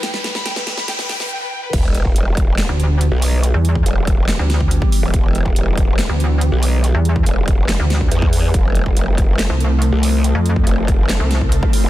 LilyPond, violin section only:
\new Staff \with { instrumentName = "Violin section" } { \time 4/4 \key e \phrygian \tempo 4 = 141 g''16 b'16 b'16 b''16 g''16 b'16 b'16 b''16 g''16 b'16 g''16 b'16 g''16 b'16 g''16 b'16 | r1 | r1 | r1 |
r1 | r1 | r1 | }